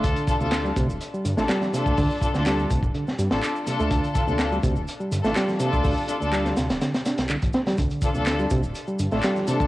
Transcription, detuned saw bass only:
X:1
M:4/4
L:1/16
Q:1/4=124
K:Dm
V:1 name="Detuned saw bass" clef=bass
D,, z2 D,,3 D,, D,,, z2 G,, A,,, z3 D,, | D,, z2 D,,3 D,, D,,, z2 G,, A,,, z3 D,, | D,, z2 D,,3 D,, D,,, z2 G,, A,,, z3 D,, | D,, z2 D,,3 D,, D,,, z3 C,,2 A,,, z2 |
D,, z2 D,,3 D,, D,,, z2 G,, A,,, z3 D,, |]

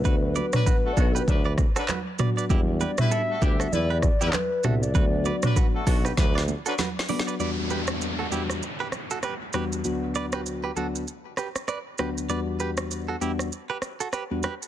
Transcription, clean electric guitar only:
X:1
M:4/4
L:1/16
Q:"Swing 16ths" 1/4=98
K:Em
V:1 name="Clean electric guitar"
[FB] z [Bd] z [FB] z [FA] [GB] z [Bd] z [FA] [FB] z [Bd] [Bd] | [EG] z [GB] z [EA] z [EG] [FA] z [GB] z [EG] z2 [FA] z | [FB] z [Bd] z [FB] z [FA] [GB] z [Bd] z [FA] [FB] z [Bd] [Bd] | [Bd] z [GB] z2 [FA] [EG] z2 [GB] z [FA] [GB] z [GB] z |
z2 [Bd] [GB] z [GB] [FA] z3 [GB] z [Bd] z [GB] z | [Bd] z [GB] z2 [FA] [EG] z2 [GB] z [FA] [GB] z [GB] z |]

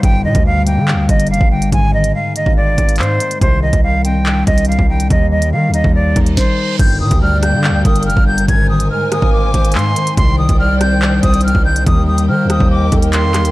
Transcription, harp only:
X:1
M:4/4
L:1/8
Q:1/4=142
K:Gphr
V:1 name="Harp" clef=bass
G,, D, G, B, D B, G, D, | A,, E, A, B, C B, A, E, | C, E, G, C D C G, E, | E, G, B, E B E3 |
G,, D, G, B, D B, G, D, | A,, E, A, B, C B, A, E, | C, E, G, C D C G, E, | E, G, B, E e E B, G, |]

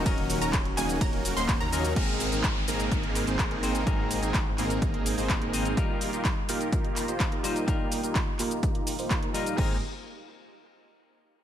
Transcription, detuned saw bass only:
X:1
M:4/4
L:1/16
Q:1/4=126
K:Ab
V:1 name="Detuned saw bass" clef=bass
z3 E,,,3 E,,,2 E,,,3 E,,,2 E,,3 | A,,,3 A,,,3 A,,,2 z3 A,,,2 A,,,3 | z3 A,,,3 A,,,2 z3 A,,,2 A,,,3 | z16 |
z16 | A,,,2 z12 z2 |]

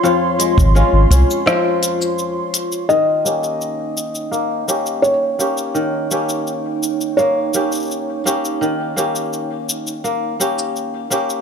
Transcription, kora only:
X:1
M:4/4
L:1/8
Q:1/4=84
K:Ebmix
V:1 name="Kora"
[F,,F,A,DF] A, [A,DF] D F,4 | E, [B,DG]3 B, [B,DG]2 [B,DG] | E, [B,DG]3 B, [B,DG]2 [B,DG] | E, [B,DG]3 B, [B,DG]2 [B,DG] |]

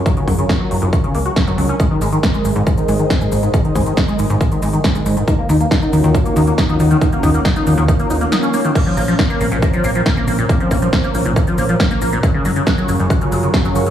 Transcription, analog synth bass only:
X:1
M:4/4
L:1/16
Q:1/4=138
K:Bbm
V:1 name="Analog synth bass" clef=bass
z2 G,,, z3 G,,, G,,, z2 D,, z2 G,,, D,, z | z2 A,,, z3 A,,, A,,, z2 A,,, z2 A,,, A,,, z | z2 A,,, z3 A,,, A,,, z2 A,,, z2 A,,, A,,, z | z2 E,, z3 E,, E,, z2 E,, z2 E,, E,, z |
z2 E,, z3 E,, E,, z2 E,,, z4 z | z2 B,,, z3 B,,, B,,, z2 B,,, z2 B,,, B,,, z | z2 B,,, z3 B,,, B,,, z2 B,,, z2 B,,, B,,, z | z2 G,,, z3 G,,, G,,, z2 G,,, z2 G,,, G,,, z |]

